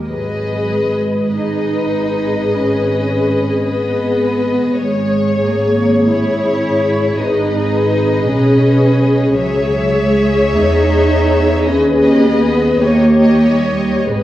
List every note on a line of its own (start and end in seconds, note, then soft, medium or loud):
0.06 4.74 G#1 soft
0.06 0.69 F#3 soft
0.06 1.32 G#4 soft
0.06 1.33 B4 soft
0.06 1.32 D#5 soft
0.71 1.36 G#3 soft
1.36 2.54 D#4 medium
1.36 3.61 G#4 soft
1.36 3.62 B4 soft
1.36 3.61 D#5 soft
2.55 3.65 C#4 soft
3.64 4.78 B3 medium
3.64 4.75 G#4 soft
3.64 4.76 B4 soft
3.64 4.76 D#5 soft
4.77 7.17 G#1 soft
4.77 5.41 G#3 medium
4.77 6.04 G#4 soft
4.77 6.05 C#5 soft
5.42 6.07 A#3 soft
6.06 7.21 E4 medium
6.06 7.18 G#4 soft
6.06 7.18 C#5 soft
6.06 7.19 C#5 soft
7.20 8.25 G#1 soft
7.20 8.26 D#4 medium
7.20 9.32 G#4 soft
7.20 9.37 B4 soft
7.20 9.32 D#5 soft
8.26 9.37 B1 soft
8.26 9.36 C#4 medium
9.35 10.54 C#2 medium
9.35 9.94 F#3 medium
9.35 11.62 G#4 medium
9.35 11.63 C#5 medium
9.35 11.62 E5 medium
9.96 10.56 G#3 medium
10.56 11.66 E2 soft
10.56 11.66 D#4 medium
11.65 12.81 D#2 medium
11.65 12.22 C#4 medium
11.65 12.80 G#4 medium
11.65 12.80 B4 medium
11.65 12.82 D#5 medium
12.22 12.82 B3 medium
12.81 14.06 D#2 medium
12.81 13.44 A#3 medium
12.81 14.08 G4 soft
12.81 14.09 C#5 soft
12.81 14.07 D#5 soft
13.43 14.08 G3 medium
14.08 14.23 G#1 soft
14.08 14.23 G#3 medium
14.08 14.23 G#4 soft
14.08 14.23 B4 soft
14.08 14.23 D#5 soft